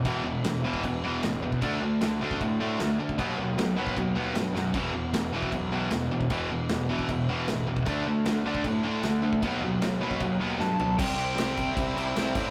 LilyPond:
<<
  \new Staff \with { instrumentName = "Lead electric guitar" } { \time 4/4 \key e \minor \tempo 4 = 154 r1 | r1 | r1 | r1 |
r1 | r1 | r2. <a' a''>4 | <g' g''>4 <g' g''>8 <g' g''>8 <e' e''>2 | }
  \new Staff \with { instrumentName = "Distorted electric guitar" } { \clef bass \time 4/4 \key e \minor <e, b, e>4. <e, b, e>2~ <e, b, e>8 | <d a d'>4. <d a d'>2~ <d a d'>8 | <b, fis b>4. <b, fis b>2~ <b, fis b>8 | <e, b, e>4. <e, b, e>2~ <e, b, e>8 |
<e, b, e>4. <e, b, e>2~ <e, b, e>8 | <d a d'>4. <d a d'>2~ <d a d'>8 | <b, fis b>4. <b, fis b>2~ <b, fis b>8 | <c g c'>8 <c g c'>8 <c g c'>8 <c g c'>8 <c g c'>8 <c g c'>8 <c g c'>8 <c g c'>8 | }
  \new Staff \with { instrumentName = "Distorted electric guitar" } { \clef bass \time 4/4 \key e \minor <e, b, e>8 <e, b,>8 <e, b,>8 <e, b, e>8 <e, b,>8 <e, b, e>8 <e, b,>8 <e, b,>8 | <d a d'>8 <d a>8 <d a>8 <d a d'>8 <d a>8 <d a d'>8 <d a>8 <d a>8 | <b, fis b>8 <b, fis>8 <b, fis>8 <b, fis b>8 <b, fis>8 <b, fis b>8 <b, fis>8 <b, fis>8 | <e, b, e>8 <e, b,>8 <e, b,>8 <e, b, e>8 <e, b,>8 <e, b, e>8 <e, b,>8 <e, b,>8 |
<e, b, e>8 <e, b,>8 <e, b,>8 <e, b, e>8 <e, b,>8 <e, b, e>8 <e, b,>8 <e, b,>8 | <d a d'>8 <d a>8 <d a>8 <d a d'>8 <d a>8 <d a d'>8 <d a>8 <d a>8 | <b, fis b>8 <b, fis>8 <b, fis>8 <b, fis b>8 <b, fis>8 <b, fis b>8 <b, fis>8 <b, fis>8 | <c g c'>2~ <c g c'>8 <c g c'>8 <c g c'>4 | }
  \new Staff \with { instrumentName = "Overdriven electric guitar" } { \clef bass \time 4/4 \key e \minor <e, b, e>8 <e, b,>8 <e, b,>8 <e, b, e>8 <e, b,>8 <e, b, e>8 <e, b,>8 <e, b,>8 | <d a d'>8 <d a>8 <d a>8 <d a d'>8 <d a>8 <d a d'>8 <d a>8 <d a>8 | <b, fis b>8 <b, fis>8 <b, fis>8 <b, fis b>8 <b, fis>8 <b, fis b>8 <b, fis>8 <b, fis>8 | <e, b, e>8 <e, b,>8 <e, b,>8 <e, b, e>8 <e, b,>8 <e, b, e>8 <e, b,>8 <e, b,>8 |
<e, b, e>8 <e, b,>8 <e, b,>8 <e, b, e>8 <e, b,>8 <e, b, e>8 <e, b,>8 <e, b,>8 | <d a d'>8 <d a>8 <d a>8 <d a d'>8 <d a>8 <d a d'>8 <d a>8 <d a>8 | <b, fis b>8 <b, fis>8 <b, fis>8 <b, fis b>8 <b, fis>8 <b, fis b>8 <b, fis>8 <b, fis>8 | r1 | }
  \new Staff \with { instrumentName = "Picked electric bass" } { \clef bass \time 4/4 \key e \minor e,,8 e,,8 e,,8 e,,8 e,,8 e,,8 a,,8 e,8 | d,8 d,8 d,8 d,8 a,4 d,8 d,8 | dis,8 dis,8 dis,8 dis,8 dis,8 dis,8 g,8 fis,8 | e,,8 e,,8 e,,8 e,,8 b,,4 e,,8 e,,8 |
e,,8 e,,8 e,,8 e,,8 e,,8 e,,8 a,,8 e,,8 | d,8 d,8 d,8 d,8 a,4 d,8 d,8 | dis,8 dis,8 dis,8 dis,8 dis,8 dis,8 g,8 b,,8 | c,8 c,8 c,4 c,8 c,8 c,8 a,8 | }
  \new DrumStaff \with { instrumentName = "Drums" } \drummode { \time 4/4 <cymc bd>4 <cymc sn>8. bd16 <cymc bd>4 <cymc sn>8. bd16 | <cymc bd>4 <cymc sn>8. bd16 <cymc bd>4 <cymc sn>8. bd16 | <cymc bd>4 <cymc sn>8. bd16 <cymc bd>4 <cymc sn>8 sn8 | <cymc bd>4 <cymc sn>8. bd16 <cymc bd>4 <cymc sn>8. bd16 |
<cymc bd>4 <cymc sn>8. bd16 <cymc bd>4 <cymc sn>8. bd16 | <cymc bd>4 <cymc sn>8. bd16 <cymc bd>4 <cymc sn>8. bd16 | <cymc bd>4 <cymc sn>8. bd16 <cymc bd>4 sn8 tomfh8 | <cymc bd>8 cymc8 <cymc sn>8 <cymc bd>8 <cymc bd>8 cymc8 <cymc sn>8 <cymc bd>8 | }
>>